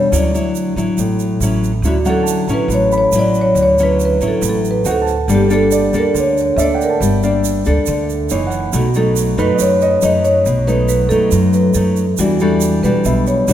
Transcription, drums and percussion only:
0.13 shaker
0.35 shaker
0.55 shaker
0.78 shaker
0.98 shaker
1.19 shaker
1.41 shaker
1.64 shaker
1.84 shaker
2.05 shaker
2.27 shaker
2.49 shaker
2.70 shaker
2.92 shaker
3.12 shaker
3.34 shaker
3.56 shaker
3.78 shaker
4.00 shaker
4.21 shaker
4.42 shaker
4.65 shaker
4.85 shaker
5.07 shaker
5.29 shaker
5.50 shaker
5.71 shaker
5.93 shaker
6.16 shaker
6.37 shaker
6.59 shaker
6.81 shaker
7.02 shaker
7.23 shaker
7.44 shaker
7.65 shaker
7.86 shaker
8.10 shaker
8.29 shaker
8.51 shaker
8.73 shaker
8.94 shaker
9.16 shaker
9.38 shaker
9.59 shaker
9.81 shaker
10.02 shaker
10.25 shaker
10.46 shaker
10.68 shaker
10.89 shaker
11.10 shaker
11.31 shaker
11.53 shaker
11.74 shaker
11.96 shaker
12.17 shaker
12.39 shaker
12.61 shaker
12.84 shaker
13.05 shaker
13.27 shaker
13.48 shaker

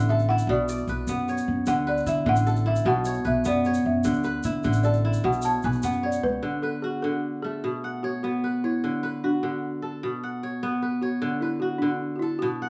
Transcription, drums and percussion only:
0.19 shaker
0.38 shaker
0.68 shaker
0.78 shaker
0.88 shaker
1.07 shaker
1.28 shaker
1.38 shaker
1.66 shaker
1.98 shaker
2.07 shaker
2.36 shaker
2.47 shaker
2.56 shaker
2.76 shaker
3.05 shaker
3.14 shaker
3.24 shaker
3.45 shaker
3.64 shaker
3.74 shaker
4.04 shaker
4.14 shaker
4.23 shaker
4.43 shaker
4.63 shaker
4.73 shaker
4.83 shaker
4.94 shaker
5.13 shaker
5.33 shaker
5.42 shaker
5.62 shaker
5.72 shaker
5.83 shaker
5.93 shaker
6.12 shaker

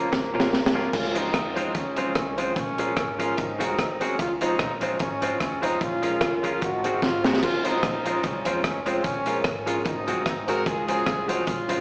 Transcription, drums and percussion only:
0.13 kick, snare
0.40 snare
0.53 snare
0.66 snare
0.93 kick, crash
1.15 closed hi-hat
1.34 kick, cross-stick, closed hi-hat
1.56 closed hi-hat
1.75 kick, closed hi-hat
1.96 closed hi-hat
2.15 kick, cross-stick, closed hi-hat
2.38 closed hi-hat
2.56 kick, closed hi-hat
2.78 closed hi-hat
2.97 kick, cross-stick, closed hi-hat
3.19 closed hi-hat
3.38 kick, closed hi-hat
3.61 closed hi-hat
3.79 kick, cross-stick, closed hi-hat
4.01 closed hi-hat
4.19 kick, closed hi-hat
4.41 closed hi-hat
4.59 kick, cross-stick, closed hi-hat
4.81 closed hi-hat
4.99 kick, closed hi-hat
5.22 closed hi-hat
5.40 kick, cross-stick, closed hi-hat
5.63 closed hi-hat
5.81 kick, closed hi-hat
6.03 closed hi-hat
6.21 kick, cross-stick, closed hi-hat
6.44 closed hi-hat
6.62 kick, closed hi-hat
6.84 closed hi-hat
7.02 kick, snare
7.24 snare
7.33 snare
7.43 kick, crash
7.65 closed hi-hat
7.83 kick, cross-stick, closed hi-hat
8.05 closed hi-hat
8.23 kick, closed hi-hat
8.45 closed hi-hat
8.64 kick, cross-stick, closed hi-hat
8.86 closed hi-hat
9.04 kick, closed hi-hat
9.26 closed hi-hat
9.44 kick, cross-stick, closed hi-hat
9.67 closed hi-hat
9.85 kick, closed hi-hat
10.08 closed hi-hat
10.26 kick, cross-stick, closed hi-hat
10.48 closed hi-hat
10.66 kick, closed hi-hat
10.88 closed hi-hat
11.06 kick, cross-stick, closed hi-hat
11.29 closed hi-hat
11.47 kick, closed hi-hat
11.69 closed hi-hat

